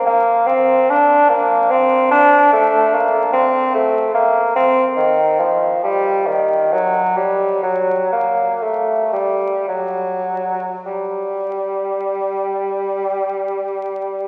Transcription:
0.06 0.48 A#3 loud
0.47 0.91 C4 loud
0.90 1.30 D4 loud
1.29 1.72 A#3 loud
1.70 2.11 C4 loud
2.11 2.51 D4 loud
2.52 2.95 A3 loud
2.94 3.32 A#3 loud
3.32 3.72 C4 loud
3.74 4.13 A3 medium
4.14 4.53 A#3 loud
4.55 4.84 C4 loud
4.96 5.41 D#3 medium
5.39 5.82 F3 medium
5.83 6.28 G3 medium
6.26 6.74 D#3 medium
6.72 7.18 F#3 loud
7.16 7.62 G3 medium
7.63 8.09 F#3 medium
8.12 8.63 A#3 medium
8.62 9.12 A3 medium
9.13 9.66 G3 medium
9.68 10.69 F#3 medium
10.86 14.28 G3 medium

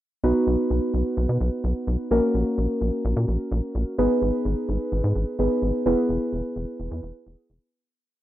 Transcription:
0.24 0.33 B1 loud
0.24 2.07 B3 medium
0.24 2.07 D#4 medium
0.24 2.07 F#4 medium
0.24 2.07 B4 medium
0.47 0.56 B1 loud
0.70 0.80 B1 loud
0.94 1.03 B1 medium
1.17 1.27 B1 loud
1.29 1.38 B2 medium
1.41 1.50 B1 loud
1.64 1.73 B1 loud
1.88 1.97 B1 loud
2.11 2.20 A#1 loud
2.11 3.95 A#3 medium
2.11 3.95 C#4 medium
2.11 3.95 F#4 medium
2.11 3.95 A#4 medium
2.34 2.44 A#1 loud
2.58 2.67 A#1 loud
2.81 2.91 A#1 medium
3.05 3.14 A#1 loud
3.17 3.26 A#2 loud
3.28 3.37 A#1 loud
3.52 3.61 A#1 loud
3.75 3.84 A#1 medium
3.98 4.08 G#1 loud
3.98 5.36 B3 medium
3.98 5.36 D#4 medium
3.98 5.36 G#4 medium
3.98 5.36 B4 medium
4.22 4.31 G#1 loud
4.45 4.55 G#1 loud
4.69 4.78 G#1 medium
4.92 5.01 G#1 medium
5.04 5.13 G#2 medium
5.16 5.25 G#1 loud
5.39 5.48 G#1 loud
5.39 5.85 B3 medium
5.39 5.86 D#4 medium
5.39 5.85 G#4 medium
5.39 5.85 B4 medium
5.62 5.72 G#1 loud
5.86 5.95 E1 loud
5.86 7.70 B3 medium
5.86 7.70 E4 medium
5.86 7.70 G#4 medium
5.86 7.70 B4 medium
6.09 6.19 E1 loud
6.33 6.42 E1 loud
6.56 6.66 E1 loud
6.80 6.89 E1 loud
6.91 7.01 E2 medium
7.03 7.12 E1 loud
7.27 7.36 E1 loud
7.50 7.59 E1 loud

